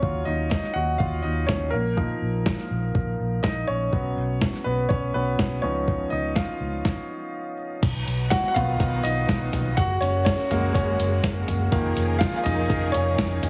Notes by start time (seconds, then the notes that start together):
Already playing: C#5
0.02 D#2 F#3 C#4 F4, kick
0.25 D#2 D#4 D#5
0.50 D#4 D#5, kick, snare
0.64 snare
0.74 D#2 F#4 F#5
0.98 D#2 F4 F5, kick
1.22 D#2 D#4 D#5
1.47 D#2 C#4 C#5, kick, snare
1.71 A#1 A#3 A#4
1.96 F3 A#3 D#4, kick
2.22 A#1
2.46 kick, snare
2.58 snare
2.71 A#1
2.95 A#1, kick
3.19 A#1
3.43 D#4 D#5, kick, snare
3.67 A#1 C#4 C#5
3.92 B1 F#3 B3 C#4, kick
4.17 B1
4.42 kick, snare
4.54 snare
4.64 B1 B3 B4
4.89 B1 C#4 C#5, kick
5.14 B1 F#3 B3 C#4 B4
5.39 B1, kick, snare
5.62 C#2 F3 B3 C#4 D#4 C#5
5.88 kick
6.10 C#2 D#4 D#5
6.35 F4 F5, kick, snare
6.60 C#2
6.85 kick, snare
7.83 B1 F#3 B3 D#4, kick, closed hi-hat, crash
8.07 B1, closed hi-hat, tambourine
8.30 F#4 F#5, kick, snare, closed hi-hat, tambourine
8.44 snare
8.48 F#5
8.54 B1 D#3 F#3 B3 F4 F5, closed hi-hat, floor tom
8.80 B1, kick, closed hi-hat, tambourine
9.04 B1 D#4 D#5, closed hi-hat, tambourine
9.28 kick, snare, closed hi-hat, tambourine
9.52 B1, closed hi-hat, floor tom, tambourine
9.77 F#1 G#3 A#3 F#4 F#5, kick, closed hi-hat
10.01 F#1 C#4 C#5, closed hi-hat, tambourine
10.25 C#4 C#5, kick, snare, closed hi-hat, tambourine
10.38 snare
10.50 F#1 F#3 G#3 A#3, closed hi-hat, floor tom, tambourine
10.74 F#1 C#4 C#5, kick, closed hi-hat, tambourine
10.99 F#1, closed hi-hat, tambourine
11.23 F#1, kick, snare, closed hi-hat, tambourine
11.48 F#1, closed hi-hat, floor tom, tambourine
11.71 F1 D#3 F3 A#3 C#4 D#4 G#4 A#4, kick, closed hi-hat, tambourine
11.97 F1, closed hi-hat, tambourine
12.19 F4 F5, kick, snare, closed hi-hat, tambourine
12.33 F5, snare
12.44 F1 D#4 D#5, closed hi-hat, floor tom, tambourine
12.70 F1, kick, closed hi-hat, tambourine
12.92 F1 C#4 C#5, closed hi-hat, tambourine
13.18 F1, kick, snare, closed hi-hat, tambourine
13.43 F1, closed hi-hat, floor tom, tambourine